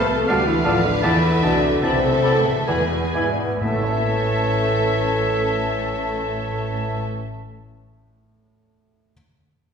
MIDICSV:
0, 0, Header, 1, 13, 480
1, 0, Start_track
1, 0, Tempo, 747198
1, 662, Time_signature, 3, 2, 24, 8
1, 662, Tempo, 795756
1, 1142, Tempo, 849858
1, 1622, Tempo, 925926
1, 4022, Tempo, 900901
1, 5318, End_track
2, 0, Start_track
2, 0, Title_t, "Flute section"
2, 0, Program_c, 0, 73
2, 187, Note_on_c, 0, 81, 55
2, 240, Note_off_c, 0, 81, 0
2, 418, Note_on_c, 0, 81, 48
2, 473, Note_off_c, 0, 81, 0
2, 667, Note_on_c, 0, 83, 54
2, 720, Note_off_c, 0, 83, 0
2, 907, Note_on_c, 0, 83, 39
2, 960, Note_off_c, 0, 83, 0
2, 1142, Note_on_c, 0, 83, 50
2, 1194, Note_off_c, 0, 83, 0
2, 1374, Note_on_c, 0, 83, 47
2, 1429, Note_off_c, 0, 83, 0
2, 1623, Note_on_c, 0, 83, 44
2, 1677, Note_off_c, 0, 83, 0
2, 1862, Note_on_c, 0, 83, 43
2, 1918, Note_off_c, 0, 83, 0
2, 2114, Note_on_c, 0, 81, 48
2, 3880, Note_off_c, 0, 81, 0
2, 5318, End_track
3, 0, Start_track
3, 0, Title_t, "Oboe"
3, 0, Program_c, 1, 68
3, 175, Note_on_c, 1, 77, 56
3, 278, Note_off_c, 1, 77, 0
3, 411, Note_on_c, 1, 77, 51
3, 514, Note_off_c, 1, 77, 0
3, 658, Note_on_c, 1, 81, 54
3, 755, Note_off_c, 1, 81, 0
3, 901, Note_on_c, 1, 81, 53
3, 997, Note_off_c, 1, 81, 0
3, 1145, Note_on_c, 1, 81, 52
3, 1235, Note_off_c, 1, 81, 0
3, 1375, Note_on_c, 1, 81, 47
3, 1465, Note_off_c, 1, 81, 0
3, 1621, Note_on_c, 1, 80, 46
3, 1704, Note_off_c, 1, 80, 0
3, 1859, Note_on_c, 1, 80, 42
3, 1942, Note_off_c, 1, 80, 0
3, 2108, Note_on_c, 1, 76, 52
3, 3874, Note_off_c, 1, 76, 0
3, 5318, End_track
4, 0, Start_track
4, 0, Title_t, "Violin section"
4, 0, Program_c, 2, 48
4, 0, Note_on_c, 2, 81, 70
4, 172, Note_on_c, 2, 77, 52
4, 173, Note_off_c, 2, 81, 0
4, 650, Note_off_c, 2, 77, 0
4, 664, Note_on_c, 2, 76, 66
4, 1141, Note_off_c, 2, 76, 0
4, 1148, Note_on_c, 2, 76, 54
4, 1615, Note_off_c, 2, 76, 0
4, 1625, Note_on_c, 2, 80, 47
4, 1969, Note_off_c, 2, 80, 0
4, 2110, Note_on_c, 2, 76, 53
4, 3876, Note_off_c, 2, 76, 0
4, 5318, End_track
5, 0, Start_track
5, 0, Title_t, "Clarinet"
5, 0, Program_c, 3, 71
5, 178, Note_on_c, 3, 74, 50
5, 281, Note_off_c, 3, 74, 0
5, 414, Note_on_c, 3, 74, 49
5, 517, Note_off_c, 3, 74, 0
5, 660, Note_on_c, 3, 74, 53
5, 756, Note_off_c, 3, 74, 0
5, 898, Note_on_c, 3, 74, 51
5, 995, Note_off_c, 3, 74, 0
5, 1146, Note_on_c, 3, 74, 49
5, 1237, Note_off_c, 3, 74, 0
5, 1377, Note_on_c, 3, 74, 46
5, 1468, Note_off_c, 3, 74, 0
5, 1619, Note_on_c, 3, 74, 43
5, 1702, Note_off_c, 3, 74, 0
5, 1862, Note_on_c, 3, 74, 39
5, 1945, Note_off_c, 3, 74, 0
5, 2109, Note_on_c, 3, 73, 47
5, 3874, Note_off_c, 3, 73, 0
5, 5318, End_track
6, 0, Start_track
6, 0, Title_t, "Violin section"
6, 0, Program_c, 4, 48
6, 0, Note_on_c, 4, 69, 65
6, 179, Note_off_c, 4, 69, 0
6, 179, Note_on_c, 4, 71, 66
6, 1141, Note_on_c, 4, 69, 64
6, 1143, Note_off_c, 4, 71, 0
6, 1620, Note_on_c, 4, 68, 45
6, 1622, Note_off_c, 4, 69, 0
6, 1857, Note_off_c, 4, 68, 0
6, 2112, Note_on_c, 4, 69, 53
6, 3877, Note_off_c, 4, 69, 0
6, 5318, End_track
7, 0, Start_track
7, 0, Title_t, "Grand piano"
7, 0, Program_c, 5, 0
7, 0, Control_c, 5, 64, 127
7, 0, Note_on_c, 5, 41, 63
7, 0, Note_on_c, 5, 48, 48
7, 0, Note_on_c, 5, 57, 57
7, 0, Note_on_c, 5, 69, 47
7, 85, Note_off_c, 5, 69, 0
7, 154, Note_off_c, 5, 41, 0
7, 181, Note_off_c, 5, 57, 0
7, 190, Note_on_c, 5, 38, 65
7, 191, Control_c, 5, 64, 0
7, 197, Note_off_c, 5, 48, 0
7, 283, Control_c, 5, 64, 127
7, 424, Note_on_c, 5, 69, 51
7, 425, Note_on_c, 5, 74, 51
7, 642, Note_off_c, 5, 69, 0
7, 643, Note_off_c, 5, 74, 0
7, 655, Note_off_c, 5, 38, 0
7, 666, Note_on_c, 5, 40, 66
7, 676, Control_c, 5, 64, 0
7, 787, Control_c, 5, 64, 127
7, 894, Note_off_c, 5, 40, 0
7, 904, Note_on_c, 5, 47, 54
7, 1144, Note_on_c, 5, 64, 51
7, 1285, Note_off_c, 5, 47, 0
7, 1380, Note_on_c, 5, 69, 53
7, 1524, Note_off_c, 5, 64, 0
7, 1624, Note_off_c, 5, 69, 0
7, 1627, Note_on_c, 5, 40, 54
7, 1634, Control_c, 5, 64, 0
7, 1735, Control_c, 5, 64, 127
7, 1869, Note_on_c, 5, 64, 41
7, 1873, Note_on_c, 5, 74, 39
7, 2091, Note_off_c, 5, 64, 0
7, 2094, Note_off_c, 5, 74, 0
7, 2097, Note_off_c, 5, 40, 0
7, 2112, Note_on_c, 5, 45, 40
7, 2121, Control_c, 5, 64, 0
7, 2149, Note_on_c, 5, 57, 42
7, 2185, Note_on_c, 5, 64, 39
7, 2216, Control_c, 5, 64, 127
7, 2221, Note_on_c, 5, 73, 38
7, 2258, Note_on_c, 5, 76, 37
7, 3877, Note_off_c, 5, 45, 0
7, 3914, Note_off_c, 5, 57, 0
7, 3951, Note_off_c, 5, 64, 0
7, 3987, Note_off_c, 5, 73, 0
7, 4023, Note_off_c, 5, 76, 0
7, 4995, Control_c, 5, 64, 0
7, 5318, End_track
8, 0, Start_track
8, 0, Title_t, "French horn section"
8, 0, Program_c, 6, 60
8, 60, Note_on_c, 6, 69, 73
8, 175, Note_off_c, 6, 69, 0
8, 187, Note_on_c, 6, 67, 84
8, 298, Note_off_c, 6, 67, 0
8, 299, Note_on_c, 6, 64, 77
8, 418, Note_off_c, 6, 64, 0
8, 420, Note_on_c, 6, 65, 71
8, 540, Note_off_c, 6, 65, 0
8, 552, Note_on_c, 6, 62, 78
8, 662, Note_on_c, 6, 64, 85
8, 669, Note_off_c, 6, 62, 0
8, 900, Note_off_c, 6, 64, 0
8, 901, Note_on_c, 6, 62, 69
8, 1142, Note_on_c, 6, 60, 81
8, 1143, Note_off_c, 6, 62, 0
8, 1491, Note_off_c, 6, 60, 0
8, 1502, Note_on_c, 6, 57, 63
8, 1622, Note_on_c, 6, 59, 70
8, 1624, Note_off_c, 6, 57, 0
8, 2109, Note_off_c, 6, 59, 0
8, 2118, Note_on_c, 6, 57, 70
8, 3884, Note_off_c, 6, 57, 0
8, 5318, End_track
9, 0, Start_track
9, 0, Title_t, "Viola section"
9, 0, Program_c, 7, 48
9, 0, Note_on_c, 7, 60, 52
9, 0, Note_on_c, 7, 69, 55
9, 169, Note_off_c, 7, 69, 0
9, 176, Note_off_c, 7, 60, 0
9, 177, Note_on_c, 7, 69, 52
9, 178, Note_on_c, 7, 59, 49
9, 653, Note_off_c, 7, 59, 0
9, 653, Note_off_c, 7, 69, 0
9, 666, Note_on_c, 7, 57, 50
9, 667, Note_on_c, 7, 69, 57
9, 1135, Note_off_c, 7, 57, 0
9, 1148, Note_on_c, 7, 57, 55
9, 1606, Note_off_c, 7, 69, 0
9, 1616, Note_off_c, 7, 57, 0
9, 1625, Note_on_c, 7, 56, 43
9, 1625, Note_on_c, 7, 71, 47
9, 1969, Note_off_c, 7, 56, 0
9, 1969, Note_off_c, 7, 71, 0
9, 2105, Note_on_c, 7, 61, 43
9, 3870, Note_off_c, 7, 61, 0
9, 5318, End_track
10, 0, Start_track
10, 0, Title_t, "Bassoon"
10, 0, Program_c, 8, 70
10, 186, Note_on_c, 8, 57, 54
10, 288, Note_off_c, 8, 57, 0
10, 416, Note_on_c, 8, 57, 51
10, 519, Note_off_c, 8, 57, 0
10, 667, Note_on_c, 8, 52, 56
10, 763, Note_off_c, 8, 52, 0
10, 903, Note_on_c, 8, 52, 50
10, 999, Note_off_c, 8, 52, 0
10, 1149, Note_on_c, 8, 52, 49
10, 1239, Note_off_c, 8, 52, 0
10, 1385, Note_on_c, 8, 52, 44
10, 1475, Note_off_c, 8, 52, 0
10, 1628, Note_on_c, 8, 52, 49
10, 1711, Note_off_c, 8, 52, 0
10, 1866, Note_on_c, 8, 52, 44
10, 1949, Note_off_c, 8, 52, 0
10, 2114, Note_on_c, 8, 52, 54
10, 3880, Note_off_c, 8, 52, 0
10, 5318, End_track
11, 0, Start_track
11, 0, Title_t, "Cello section"
11, 0, Program_c, 10, 48
11, 57, Note_on_c, 10, 57, 65
11, 175, Note_off_c, 10, 57, 0
11, 182, Note_on_c, 10, 55, 67
11, 297, Note_on_c, 10, 52, 66
11, 298, Note_off_c, 10, 55, 0
11, 417, Note_off_c, 10, 52, 0
11, 418, Note_on_c, 10, 53, 64
11, 536, Note_on_c, 10, 50, 54
11, 539, Note_off_c, 10, 53, 0
11, 662, Note_off_c, 10, 50, 0
11, 662, Note_on_c, 10, 52, 60
11, 895, Note_off_c, 10, 52, 0
11, 900, Note_on_c, 10, 50, 59
11, 1143, Note_off_c, 10, 50, 0
11, 1143, Note_on_c, 10, 48, 66
11, 1495, Note_on_c, 10, 45, 56
11, 1499, Note_off_c, 10, 48, 0
11, 1621, Note_off_c, 10, 45, 0
11, 1621, Note_on_c, 10, 47, 48
11, 2107, Note_on_c, 10, 57, 47
11, 2109, Note_off_c, 10, 47, 0
11, 3873, Note_off_c, 10, 57, 0
11, 5318, End_track
12, 0, Start_track
12, 0, Title_t, "Timpani"
12, 0, Program_c, 11, 47
12, 2106, Note_on_c, 11, 45, 37
12, 3872, Note_off_c, 11, 45, 0
12, 5318, End_track
13, 0, Start_track
13, 0, Title_t, "Double bass section"
13, 0, Program_c, 12, 48
13, 0, Note_on_c, 12, 36, 59
13, 175, Note_off_c, 12, 36, 0
13, 180, Note_on_c, 12, 38, 64
13, 413, Note_off_c, 12, 38, 0
13, 420, Note_on_c, 12, 33, 53
13, 660, Note_off_c, 12, 33, 0
13, 661, Note_on_c, 12, 40, 67
13, 894, Note_off_c, 12, 40, 0
13, 900, Note_on_c, 12, 36, 50
13, 1138, Note_off_c, 12, 36, 0
13, 1143, Note_on_c, 12, 35, 60
13, 1373, Note_off_c, 12, 35, 0
13, 1380, Note_on_c, 12, 38, 50
13, 1619, Note_off_c, 12, 38, 0
13, 1622, Note_on_c, 12, 40, 55
13, 1858, Note_off_c, 12, 40, 0
13, 1866, Note_on_c, 12, 44, 45
13, 2106, Note_off_c, 12, 44, 0
13, 2110, Note_on_c, 12, 33, 52
13, 3876, Note_off_c, 12, 33, 0
13, 5318, End_track
0, 0, End_of_file